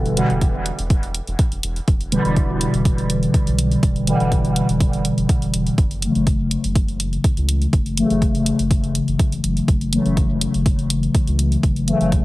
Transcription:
Already playing: sub bass E1, analog polysynth B2 D3 E3 G3
0.06 closed hi-hat
0.17 analog polysynth B2 D3 E3 G3, closed hi-hat
0.30 sub bass E1, closed hi-hat
0.41 kick, closed hi-hat
0.66 closed hi-hat
0.79 sub bass E1, closed hi-hat
0.90 kick, closed hi-hat
1.03 closed hi-hat
1.14 closed hi-hat
1.27 sub bass E1, closed hi-hat
1.39 kick, closed hi-hat
1.52 sub bass E1, closed hi-hat
1.63 sub bass E1, closed hi-hat
1.76 closed hi-hat
1.88 sub bass E1, kick, closed hi-hat
2.01 closed hi-hat
2.12 analog polysynth B2 D3 E3 G3, closed hi-hat
2.25 sub bass E1, analog polysynth B2 D3 E3 G3, closed hi-hat
2.36 kick, closed hi-hat
2.61 closed hi-hat
2.74 sub bass E1, closed hi-hat
2.85 kick, closed hi-hat
2.98 closed hi-hat
3.10 closed hi-hat
3.23 closed hi-hat
3.34 kick, closed hi-hat
3.47 sub bass B1, closed hi-hat
3.59 closed hi-hat
3.71 closed hi-hat
3.83 sub bass E1, kick, closed hi-hat
3.96 closed hi-hat
4.07 analog polysynth B2 D3 E3 G3, closed hi-hat
4.20 sub bass E1, analog polysynth B2 D3 E3 G3, closed hi-hat
4.32 kick, closed hi-hat
4.45 closed hi-hat
4.56 closed hi-hat
4.69 sub bass E1, closed hi-hat
4.80 kick, closed hi-hat
4.93 closed hi-hat
5.05 closed hi-hat
5.18 sub bass E1, closed hi-hat
5.29 kick, closed hi-hat
5.42 sub bass E1, closed hi-hat
5.53 sub bass E1, closed hi-hat
5.67 closed hi-hat
5.78 sub bass F#1, kick, closed hi-hat
5.91 closed hi-hat
6.02 analog polysynth C#3 E3 F#3 A3, closed hi-hat
6.15 sub bass F#1, analog polysynth C#3 E3 F#3 A3, closed hi-hat
6.27 kick, closed hi-hat
6.51 closed hi-hat
6.64 sub bass F#1, closed hi-hat
6.75 kick, closed hi-hat
6.88 closed hi-hat
7.00 closed hi-hat
7.13 closed hi-hat
7.24 kick, closed hi-hat
7.37 sub bass C#2, closed hi-hat
7.49 closed hi-hat
7.62 closed hi-hat
7.73 sub bass F#1, kick, closed hi-hat
7.86 closed hi-hat
7.97 analog polysynth C#3 E3 F#3 A3, closed hi-hat
8.10 sub bass F#1, analog polysynth C#3 E3 F#3 A3, closed hi-hat
8.22 kick, closed hi-hat
8.35 closed hi-hat
8.46 closed hi-hat
8.59 sub bass F#1, closed hi-hat
8.71 kick, closed hi-hat
8.84 closed hi-hat
8.95 closed hi-hat
9.08 sub bass F#1, closed hi-hat
9.19 kick, closed hi-hat
9.32 sub bass F#1, closed hi-hat
9.44 sub bass F#1, closed hi-hat
9.57 closed hi-hat
9.68 sub bass F#1, kick, closed hi-hat
9.81 closed hi-hat
9.93 analog polysynth C#3 E3 F#3 A3, closed hi-hat
10.05 sub bass F#1, analog polysynth C#3 E3 F#3 A3, closed hi-hat
10.17 kick, closed hi-hat
10.41 closed hi-hat
10.54 sub bass F#1, closed hi-hat
10.66 kick, closed hi-hat
10.79 closed hi-hat
10.90 closed hi-hat
11.03 closed hi-hat
11.15 kick, closed hi-hat
11.27 sub bass C#2, closed hi-hat
11.39 closed hi-hat
11.52 closed hi-hat
11.63 sub bass F#1, kick, closed hi-hat
11.76 closed hi-hat
11.88 analog polysynth C#3 E3 F#3 A3, closed hi-hat
12.01 sub bass F#1, analog polysynth C#3 E3 F#3 A3, closed hi-hat
12.12 kick, closed hi-hat

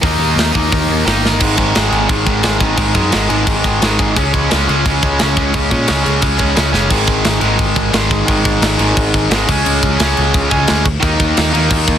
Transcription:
0.02 picked electric bass D#2, distorted electric guitar D#3 A#3, kick, open hi-hat
0.06 distorted electric guitar D#4
0.18 picked electric bass D#2
0.36 picked electric bass D#2, snare, open hi-hat
0.52 picked electric bass D#2, distorted electric guitar A#3 D#4, kick
0.57 distorted electric guitar D#3
0.72 picked electric bass D#2, kick, open hi-hat
0.89 picked electric bass D#2
1.06 picked electric bass G1, distorted electric guitar D#3 A#3 D#4, snare, open hi-hat
1.26 snare
1.40 picked electric bass G#1, distorted electric guitar G#2 D#3 G#3, kick, crash
1.57 distorted electric guitar G#2 D#3 G#3, kick, crash
1.74 picked electric bass G#1, distorted electric guitar G#2 D#3 G#3, snare, crash
1.90 picked electric bass G#1, distorted electric guitar G#2 D#3 G#3, crash
2.08 picked electric bass G#1, distorted electric guitar G#2 D#3 G#3, kick, crash
2.26 picked electric bass G#1, distorted electric guitar G#2 D#3 G#3, kick, crash
2.43 picked electric bass G#1, distorted electric guitar G#2 D#3 G#3, snare, crash
2.60 picked electric bass G#1, distorted electric guitar G#2 D#3 G#3, kick, crash
2.76 picked electric bass G#1, distorted electric guitar G#2 D#3 G#3, kick, crash
2.95 picked electric bass F#2, distorted electric guitar G#2 D#3 G#3, kick, crash
3.12 picked electric bass G#1, distorted electric guitar G#2 D#3 G#3, snare, crash
3.30 picked electric bass G#1, distorted electric guitar G#2 D#3 G#3, crash
3.47 picked electric bass G#1, distorted electric guitar G#2 D#3 G#3, kick, crash
3.64 picked electric bass G#1, distorted electric guitar G#2 D#3 G#3, kick, crash
3.82 picked electric bass G#1, distorted electric guitar G#2 D#3 G#3, snare, crash
3.99 picked electric bass G#1, distorted electric guitar G#2 D#3 G#3, kick, crash
4.16 picked electric bass C#2, distorted electric guitar C#3 G#3 C#4, kick, crash
4.33 distorted electric guitar C#3 G#3 C#4, kick, crash
4.50 picked electric bass C#2, distorted electric guitar C#3 G#3 C#4, snare, crash
4.68 picked electric bass C#2, distorted electric guitar C#3 G#3 C#4, crash
4.86 picked electric bass C#2, distorted electric guitar C#3 G#3 C#4, kick, crash
5.02 picked electric bass C#2, distorted electric guitar C#3 G#3 C#4, kick, crash
5.19 picked electric bass C#2, distorted electric guitar C#3 G#3 C#4, snare, crash
5.37 picked electric bass C#2, distorted electric guitar C#3 G#3 C#4, kick, crash
5.54 picked electric bass C#2, distorted electric guitar C#3 G#3 C#4, kick, crash
5.71 picked electric bass A#2, distorted electric guitar C#3 G#3 C#4, kick, crash
5.87 picked electric bass C#2, distorted electric guitar C#3 G#3 C#4, snare, crash
6.04 picked electric bass C#2, distorted electric guitar C#3 G#3 C#4, crash
6.21 picked electric bass C#2, distorted electric guitar C#3 G#3 C#4, kick, crash
6.38 picked electric bass C#2, distorted electric guitar C#3 G#3 C#4, kick, crash
6.56 picked electric bass C#2, distorted electric guitar C#3 G#3 C#4, snare, crash
6.72 picked electric bass F#1, distorted electric guitar C#3 G#3 C#4, snare
6.88 picked electric bass G#1, distorted electric guitar G#2 D#3, kick, crash
6.93 distorted electric guitar G#3
7.07 picked electric bass G#1, kick, crash
7.24 picked electric bass G#1, snare, crash
7.41 picked electric bass G#1, distorted electric guitar D#3 G#3, crash
7.45 distorted electric guitar G#2
7.59 picked electric bass G#1, kick, crash
7.76 picked electric bass G#1, kick, crash
7.91 picked electric bass G#1, distorted electric guitar G#2 D#3, snare, crash
7.96 distorted electric guitar G#3
8.11 kick, crash
8.26 picked electric bass G#1, distorted electric guitar G#2 D#3, kick, crash
8.30 distorted electric guitar G#3
8.45 picked electric bass G#1, kick, crash
8.62 picked electric bass G#1, snare, crash
8.78 picked electric bass G#1, distorted electric guitar G#2 D#3 G#3, crash
8.97 picked electric bass G#1, kick, crash
9.14 picked electric bass G#1, kick, crash
9.30 picked electric bass G#1, distorted electric guitar G#2 D#3 G#3, snare, crash
9.47 picked electric bass C#2, distorted electric guitar C#3 G#3 C#4, kick, crash
9.66 picked electric bass C#2, crash
9.83 picked electric bass C#2, kick, crash
9.98 picked electric bass C#2, distorted electric guitar C#3 G#3, snare, crash
10.03 distorted electric guitar C#4
10.17 picked electric bass C#2, crash
10.34 picked electric bass C#2, kick, crash
10.50 picked electric bass C#2, distorted electric guitar G#3 C#4, kick, crash
10.54 distorted electric guitar C#3
10.67 picked electric bass D2, snare, crash
10.86 kick, crash
11.00 picked electric bass D#2, distorted electric guitar D#3 A#3, kick, crash
11.04 distorted electric guitar D#4
11.20 picked electric bass D#2, kick, crash
11.37 picked electric bass D#2, snare, crash
11.53 picked electric bass D#2, distorted electric guitar D#3 A#3 D#4, crash
11.71 picked electric bass D#2, kick, crash
11.88 picked electric bass D#2, kick, crash

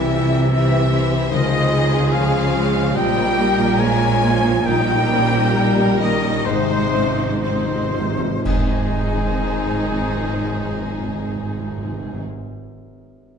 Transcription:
Already playing: grand piano C2 G4, double bass section C2, cello section C3, harp C3 C4 G4 G5, french horn section E3, viola section G3 E4, violin section E4 G4 E5, oboe E5, flute E5
0.13 viola section E4, grand piano F4, harp G4
0.32 grand piano G4, harp C5
0.51 viola section E3 G4, french horn section E3, grand piano C4, violin section E4 C5 E5, oboe E5, flute E5, harp G5
0.72 harp C5, grand piano E5
0.91 viola section E3, grand piano C4, harp E5
1.12 grand piano G4, harp G4
1.31 grand piano C#2, double bass section C#2, cello section C#3, harp C#3, french horn section D#3, viola section F3 F4, violin section G#4 D#5, flute D#5, oboe D#5
1.52 harp G#3, grand piano F4
1.72 viola section G#3, grand piano D#4, harp F4
1.93 grand piano F4, harp G#4
2.12 french horn section F3, viola section G#3 C#4, grand piano G#3, flute F5, violin section F5, oboe F5, harp F5
2.34 grand piano C#4, harp G#4
2.53 viola section G#3, grand piano G#3, harp C#4
2.75 grand piano F4, harp F4
2.94 double bass section A#1, cello section A#2, harp A#2, grand piano A#2, french horn section G3, viola section G3 C4, violin section A#4 D#5 G5, flute G5, oboe G5
3.16 harp A#3, grand piano F4
3.36 viola section A#3, grand piano D#4, harp F4
3.58 grand piano F4, harp A#4
3.78 viola section F3, french horn section G#3, grand piano A#3, violin section C#5 G#5, harp F5, flute G#5, oboe G#5
4.00 harp A#4, grand piano C#5
4.22 viola section F3, grand piano A#3, harp C#5
4.44 harp F4, grand piano F4
4.65 harp A#2, grand piano A#2, viola section D#3 D#4, french horn section G3, violin section A#4 G5, flute G5, oboe G5
4.88 harp A#3, grand piano D#4
5.10 viola section C4, grand piano C#4, harp D#4
5.33 grand piano D#4, harp A#4
5.55 viola section G3 A#3, grand piano A#3, violin section D#4, harp D#5
5.78 harp A#4, grand piano D#5
6.00 french horn section D#3, grand piano A#3, viola section C#4, flute D#5, harp D#5, violin section D#5, oboe D#5
6.23 grand piano D#4, harp D#4
6.45 double bass section G#1, harp G#2, timpani G#2, cello section G#2, grand piano G#2, french horn section C3, viola section G#3 D#4, flute C5, violin section C5, oboe C5
6.55 timpani G#2
6.69 harp C4, grand piano D#4
6.94 viola section F3, grand piano C#4, harp D#4
6.98 timpani G#2
7.07 timpani G#2
7.16 timpani G#2, grand piano D#4, harp C5
7.24 timpani G#2
7.34 timpani G#2
7.41 timpani G#2, french horn section C3, viola section D#3 C4, grand piano C4, violin section D#4 C5, flute C5, oboe C5, harp D#5
7.52 timpani G#2
7.61 timpani G#2
7.67 timpani G#2, harp C5, grand piano D#5
7.80 timpani G#2
7.89 timpani G#2
7.94 grand piano C4, harp D#5
7.99 timpani G#2
8.08 timpani G#2
8.17 timpani G#2, harp D#4, grand piano D#4
8.25 timpani G#2
8.44 double bass section G#1, timpani G#2, harp G#2, cello section G#2, grand piano G#2, viola section D#3 C4, french horn section G#3, oboe D#4, violin section D#4 G#4, flute G#5, concert bass drum, crash
8.51 timpani G#2, harp G#3, grand piano G#3
8.58 timpani G#2, harp C4, grand piano C4
8.65 timpani G#2, harp D#4, grand piano D#4
8.73 timpani G#2, harp D#5, grand piano D#5
8.80 timpani G#2
8.87 timpani G#2
8.95 timpani G#2
9.02 timpani G#2
9.10 timpani G#2
9.17 timpani G#2
9.23 timpani G#2
9.31 timpani G#2
9.38 timpani G#2
9.45 timpani G#2
9.52 timpani G#2
9.59 timpani G#2
9.66 timpani G#2
9.74 timpani G#2
9.81 timpani G#2
9.88 timpani G#2
9.95 timpani G#2
10.02 timpani G#2
10.08 timpani G#2
10.16 timpani G#2
10.23 timpani G#2
10.29 timpani G#2
10.36 timpani G#2
10.43 timpani G#2
10.50 timpani G#2
10.58 timpani G#2
10.65 timpani G#2
10.72 timpani G#2
10.80 timpani G#2
10.86 timpani G#2
10.94 timpani G#2
11.01 timpani G#2
11.08 timpani G#2
11.14 timpani G#2
11.21 timpani G#2
11.28 timpani G#2
11.35 timpani G#2
11.43 timpani G#2
11.50 timpani G#2
11.57 timpani G#2
11.63 timpani G#2
11.71 timpani G#2
11.78 timpani G#2
11.85 timpani G#2
11.92 timpani G#2
11.99 timpani G#2
12.06 timpani G#2
12.14 timpani G#2

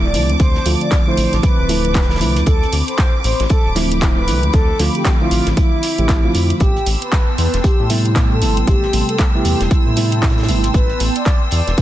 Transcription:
Already playing: analog synth bass D1, analog synth pad C4 A5 D6, violin section D6
0.04 soft synth lead D5
0.14 analog synth bass C2, fm electric piano D3 F3 A3 C4 E4, closed hi-hat, open hi-hat
0.29 analog synth bass D2, closed hi-hat
0.40 analog synth bass D2, soft synth lead C5, kick, closed hi-hat
0.54 snare
0.65 analog synth bass D2, fm electric piano D3 F3 A3 C4 F4, closed hi-hat, open hi-hat
0.81 soft synth lead D5, closed hi-hat
0.91 kick, snare, clap, closed hi-hat
1.06 fm electric piano D3 F3 A3 C4 E4, soft synth lead C5
1.17 analog synth bass A1, closed hi-hat, open hi-hat
1.33 analog synth bass A1, snare, closed hi-hat
1.43 soft synth lead B4, kick, closed hi-hat
1.59 analog synth bass D1
1.69 fm electric piano D3 F3 A3 C4 E4, closed hi-hat, open hi-hat
1.85 closed hi-hat
1.95 kick, snare, clap, closed hi-hat
2.02 snare, closed hi-hat
2.10 snare, closed hi-hat
2.16 snare, closed hi-hat
2.20 analog synth bass C2, fm electric piano D3 F3 A3 C4 E4, closed hi-hat, open hi-hat
2.36 analog synth bass D2, closed hi-hat
2.46 analog synth bass D2, soft synth lead A4, analog synth pad B5, kick, closed hi-hat
2.63 closed hi-hat
2.72 analog synth bass D2, closed hi-hat, open hi-hat
2.88 soft synth lead C5, closed hi-hat
2.98 kick, snare, clap, closed hi-hat
3.24 analog synth bass A1, soft synth lead C5, closed hi-hat, open hi-hat
3.40 analog synth bass A1, snare, closed hi-hat
3.49 soft synth lead A4, kick, closed hi-hat
3.66 analog synth bass D1
3.76 fm electric piano D3 F3 A3 C4 E4, snare, closed hi-hat, open hi-hat
3.92 closed hi-hat
4.01 fm electric piano D3 F3 A3 C4 E4, kick, snare, clap, closed hi-hat
4.17 soft synth lead B4
4.27 analog synth bass C2, fm electric piano D3 F3 A3 C4 E4, closed hi-hat, open hi-hat
4.43 analog synth bass D2, closed hi-hat
4.53 analog synth bass D2, soft synth lead A4, kick, snare, closed hi-hat
4.79 analog synth bass D2, fm electric piano D3 F3 A3 C4 F4, snare, closed hi-hat, open hi-hat
4.95 soft synth lead G4, closed hi-hat
5.05 kick, snare, clap, closed hi-hat
5.20 fm electric piano D3 F3 A3 C4 E4, soft synth lead F4
5.31 analog synth bass A1, closed hi-hat, open hi-hat
5.46 analog synth bass A1, snare, closed hi-hat
5.57 soft synth lead E4, kick, closed hi-hat
5.83 closed hi-hat, open hi-hat
5.98 analog synth bass A1, fm electric piano D3 F3 A3 C4 G4, closed hi-hat
6.09 kick, snare, clap, closed hi-hat
6.24 fm electric piano D3 F3 A3 C4 F4
6.34 analog synth bass F2, closed hi-hat, open hi-hat
6.50 closed hi-hat
6.60 analog synth bass A1, analog synth pad B3 G5 A5 C6, soft synth lead G4, violin section E6, kick, closed hi-hat
6.77 closed hi-hat
6.86 analog synth bass A1, closed hi-hat, open hi-hat
7.02 soft synth lead B4, closed hi-hat
7.12 kick, snare, clap, closed hi-hat
7.38 analog synth bass E2, soft synth lead B4, closed hi-hat, open hi-hat
7.54 analog synth bass E1, snare, closed hi-hat
7.64 soft synth lead G4, kick, closed hi-hat
7.80 analog synth bass A2
7.89 fm electric piano C3 G3 A3 B3 E4, snare, closed hi-hat, open hi-hat
8.05 closed hi-hat
8.15 fm electric piano C3 G3 A3 B3 E4, kick, snare, clap, closed hi-hat
8.31 soft synth lead A4
8.41 analog synth bass G1, fm electric piano C3 G3 A3 B3 E4, closed hi-hat, open hi-hat
8.57 analog synth bass A1, closed hi-hat
8.67 analog synth bass A1, soft synth lead G4, kick, closed hi-hat
8.83 snare
8.93 analog synth bass A1, fm electric piano C3 G3 A3 B3 G4, closed hi-hat, open hi-hat
9.09 soft synth lead A4, closed hi-hat
9.19 kick, snare, clap, closed hi-hat
9.34 fm electric piano C3 G3 A3 B3 E4, soft synth lead G4
9.45 analog synth bass E2, closed hi-hat, open hi-hat
9.61 analog synth bass E1, snare, closed hi-hat
9.71 soft synth lead E4, kick, closed hi-hat
9.86 analog synth bass A2
9.96 fm electric piano C3 G3 A3 B3 E4, closed hi-hat, open hi-hat
10.12 closed hi-hat
10.22 kick, snare, clap, closed hi-hat
10.30 snare, closed hi-hat
10.38 snare, closed hi-hat
10.43 snare, closed hi-hat
10.48 analog synth bass G1, fm electric piano C3 G3 A3 B3 E4, closed hi-hat, open hi-hat
10.64 analog synth bass A1, closed hi-hat
10.74 analog synth bass A1, soft synth lead B4, kick, closed hi-hat
10.89 closed hi-hat
11.00 analog synth bass A1, closed hi-hat, open hi-hat
11.16 soft synth lead D5, closed hi-hat
11.26 kick, snare, clap, closed hi-hat
11.51 analog synth bass E2, soft synth lead D5, closed hi-hat, open hi-hat
11.67 analog synth bass E1, snare, closed hi-hat
11.78 soft synth lead B4, kick, closed hi-hat

